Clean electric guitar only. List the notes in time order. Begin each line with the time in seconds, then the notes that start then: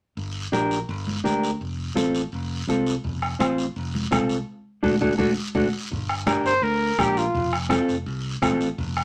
0.52 D4 G4 A#4
1.24 D4 G4 A#4
1.95 C4 F4 A4
2.69 C4 F4 A4
3.39 C4 F4 C5
4.11 C4 F4 A4
4.83 D4 F#4 A4
5.01 D4 F#4 A4
5.18 D4 F#4 A4
5.55 D4 F#4 A4
6.27 D4 G4 A#4
6.99 D4 G4 A#4
7.69 C4 F4 A4
8.42 C4 F4 A4